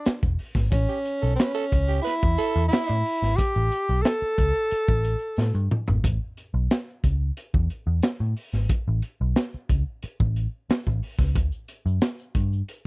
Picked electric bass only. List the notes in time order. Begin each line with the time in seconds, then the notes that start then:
0.07 muted picked electric bass stroke
0.23 E1
0.55 G#1
0.72 A1
1.23 B1
1.73 C#2
2.23 E2
2.56 E2
2.90 A2
3.22 G#1
3.56 A1
3.89 B1
4.22 muted picked electric bass stroke
4.39 C#2
4.72 muted picked electric bass stroke
4.88 A1
5.38 A2
5.55 G2
5.88 G#1
6.04 A1
6.54 B1
7.04 C#2
7.54 E2
7.87 E2
8.20 A2
8.53 G#1
8.88 A1
9.21 B1
9.54 muted picked electric bass stroke
9.70 C#2
10.04 muted picked electric bass stroke
10.20 A1
10.70 muted picked electric bass stroke
10.87 A1
11.19 C#2
11.36 D2
11.86 F#2
12.35 G2